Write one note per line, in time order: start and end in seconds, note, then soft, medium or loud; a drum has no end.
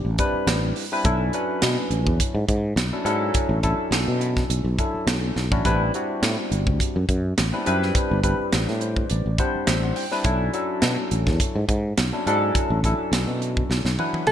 0.05 0.16 A1 medium
0.18 0.84 G3 medium
0.18 0.84 C4 medium
0.18 0.84 D4 medium
0.18 0.85 E4 medium
0.18 0.85 B4 medium
0.18 kick medium
0.18 closed hi-hat medium
0.34 muted fretless electric bass stroke soft
0.47 0.71 A1 medium
0.47 snare loud
0.47 closed hi-hat medium
0.76 open hi-hat medium
0.92 1.04 G3 medium
0.92 1.04 C4 medium
0.92 1.03 D4 medium
0.92 1.04 E4 medium
0.92 1.04 B4 loud
1.04 1.29 B1 loud
1.04 1.31 F#3 medium
1.04 1.31 C#4 medium
1.04 1.31 D4 medium
1.04 1.31 E4 medium
1.04 1.31 A4 loud
1.04 kick loud
1.04 closed hi-hat medium
1.33 2.39 F#3 medium
1.33 2.39 C#4 medium
1.33 2.39 D4 medium
1.33 2.39 E4 medium
1.33 2.39 B4 medium
1.33 closed hi-hat medium
1.62 1.76 B2 medium
1.62 snare loud
1.62 closed hi-hat medium
1.90 2.07 A1 medium
1.90 closed hi-hat medium
2.07 2.18 E2 medium
2.07 kick medium
2.20 kick medium
2.20 closed hi-hat medium
2.35 2.46 G#2 loud
2.48 2.72 G#2 medium
2.48 kick medium
2.48 closed hi-hat medium
2.76 2.90 B1 loud
2.76 snare loud
2.76 closed hi-hat medium
2.93 3.04 F#3 medium
2.93 3.03 C#4 medium
2.93 3.04 D4 medium
2.93 3.04 E4 medium
2.93 3.04 A4 medium
3.05 3.29 G#2 medium
3.05 3.58 F#3 loud
3.05 3.58 C#4 medium
3.05 3.58 D4 medium
3.05 3.58 E4 medium
3.05 3.58 A4 loud
3.05 closed hi-hat medium
3.34 kick loud
3.34 closed hi-hat medium
3.49 3.74 A1 loud
3.63 4.68 F#3 medium
3.63 4.68 C#4 medium
3.63 4.68 D4 medium
3.63 4.68 E4 medium
3.63 4.68 A4 loud
3.63 kick medium
3.63 closed hi-hat medium
3.91 4.04 B1 medium
3.91 snare loud
3.91 closed hi-hat medium
4.08 4.43 B2 medium
4.21 closed hi-hat medium
4.37 kick medium
4.37 snare soft
4.50 4.63 B1 medium
4.50 closed hi-hat medium
4.64 4.76 B1 medium
4.78 5.44 F#3 medium
4.78 5.44 C#4 medium
4.78 5.44 D4 medium
4.78 5.44 E4 medium
4.78 5.45 A4 medium
4.78 kick medium
4.78 closed hi-hat medium
4.94 muted fretless electric bass stroke soft
5.07 5.31 B1 medium
5.07 snare loud
5.07 closed hi-hat medium
5.36 5.50 B1 medium
5.36 snare medium
5.51 5.63 A1 medium
5.51 5.64 F#3 medium
5.51 5.64 C#4 medium
5.51 5.64 D4 medium
5.51 5.64 E4 medium
5.51 5.64 F#4 medium
5.51 kick medium
5.64 5.89 A1 medium
5.64 5.91 G3 medium
5.64 5.91 C4 medium
5.64 5.91 D4 medium
5.64 5.91 E4 medium
5.64 5.91 B4 loud
5.64 kick medium
5.64 closed hi-hat medium
5.94 6.99 G3 medium
5.94 6.99 C4 medium
5.94 6.99 D4 medium
5.94 6.99 E4 medium
5.94 6.99 F#4 medium
5.94 closed hi-hat medium
6.22 6.35 A2 medium
6.22 snare loud
6.22 closed hi-hat medium
6.51 6.68 G1 medium
6.51 closed hi-hat medium
6.67 6.78 D2 medium
6.67 kick medium
6.80 kick medium
6.80 closed hi-hat medium
6.96 7.07 F#2 loud
7.09 7.33 F#2 medium
7.09 kick medium
7.09 closed hi-hat medium
7.38 7.51 A1 loud
7.38 snare loud
7.38 closed hi-hat medium
7.53 7.65 G3 medium
7.53 7.65 C4 medium
7.53 7.65 D4 medium
7.53 7.65 E4 medium
7.53 7.65 B4 medium
7.66 7.91 F#2 medium
7.66 8.19 G3 medium
7.66 8.19 C4 medium
7.66 8.19 D4 medium
7.66 8.19 E4 medium
7.66 8.19 B4 loud
7.66 closed hi-hat medium
7.82 snare soft
7.95 muted fretless electric bass stroke soft
7.95 kick loud
7.95 closed hi-hat medium
8.11 8.35 G1 medium
8.23 9.28 G3 medium
8.23 9.28 C4 medium
8.23 9.28 D4 medium
8.23 9.29 E4 medium
8.23 9.28 B4 medium
8.23 kick medium
8.23 closed hi-hat medium
8.40 muted fretless electric bass stroke soft
8.52 8.66 A1 medium
8.52 snare loud
8.52 closed hi-hat medium
8.68 9.03 A2 medium
8.68 snare soft
8.81 9.08 C5 medium
8.81 closed hi-hat medium
8.96 kick medium
9.10 9.23 A1 medium
9.10 9.37 D5 medium
9.10 closed hi-hat medium
9.26 9.36 A1 medium
9.38 10.04 G3 medium
9.38 10.04 C4 medium
9.38 10.04 D4 medium
9.38 10.04 E4 medium
9.38 10.05 C5 medium
9.38 9.66 F#5 medium
9.38 kick medium
9.38 closed hi-hat medium
9.55 muted fretless electric bass stroke soft
9.67 9.91 A1 medium
9.67 9.82 E5 medium
9.67 snare loud
9.67 closed hi-hat medium
9.83 9.95 F#5 medium
9.96 10.23 G5 medium
9.96 open hi-hat medium
10.11 10.23 G3 medium
10.11 10.23 C4 medium
10.11 10.23 D4 medium
10.11 10.24 E4 medium
10.11 10.24 B4 loud
10.11 snare soft
10.24 10.48 B1 medium
10.24 10.51 F#3 medium
10.24 10.51 C#4 medium
10.24 10.51 D4 medium
10.24 10.51 E4 medium
10.24 10.51 A4 loud
10.24 kick loud
10.24 closed hi-hat medium
10.53 11.58 F#3 medium
10.53 11.58 C#4 medium
10.53 11.59 D4 medium
10.53 11.59 E4 medium
10.53 11.59 A4 medium
10.53 closed hi-hat medium
10.82 10.95 B2 medium
10.82 snare loud
10.82 closed hi-hat medium
11.11 11.29 A1 medium
11.11 closed hi-hat medium
11.27 11.38 E2 medium
11.27 kick medium
11.27 snare soft
11.40 kick medium
11.40 closed hi-hat medium
11.56 11.66 G#2 medium
11.68 11.92 G#2 medium
11.68 kick medium
11.68 closed hi-hat medium
11.98 12.11 B1 loud
11.98 snare loud
11.98 closed hi-hat medium
12.12 12.24 F#3 medium
12.12 12.25 C#4 medium
12.12 12.25 D4 medium
12.12 12.25 E4 medium
12.12 12.25 A4 medium
12.27 12.50 G#2 medium
12.27 12.79 F#3 loud
12.27 12.79 C#4 medium
12.27 12.79 D4 medium
12.27 12.79 E4 medium
12.27 12.79 A4 loud
12.27 closed hi-hat medium
12.55 muted fretless electric bass stroke soft
12.55 kick medium
12.55 closed hi-hat medium
12.70 12.94 A1 medium
12.84 13.89 F#3 medium
12.84 13.89 C#4 medium
12.84 13.89 D4 medium
12.84 13.89 E4 medium
12.84 13.89 A4 loud
12.84 kick medium
12.84 closed hi-hat medium
12.99 muted fretless electric bass stroke soft
13.12 13.25 B1 medium
13.12 snare loud
13.12 closed hi-hat medium
13.27 13.62 B2 medium
13.42 closed hi-hat medium
13.57 kick medium
13.70 13.82 B1 medium
13.70 snare medium
13.85 13.96 B1 medium
13.85 snare medium
13.98 14.32 F#3 medium
13.98 14.32 C#4 medium
13.98 14.32 D4 medium
13.98 14.32 E4 medium
13.98 14.32 B4 medium
13.98 14.25 F#5 medium
13.98 high tom medium
14.13 muted fretless electric bass stroke soft
14.13 high tom medium
14.27 14.32 B1 medium
14.27 14.32 A4 medium
14.27 14.32 E5 medium
14.27 mid tom medium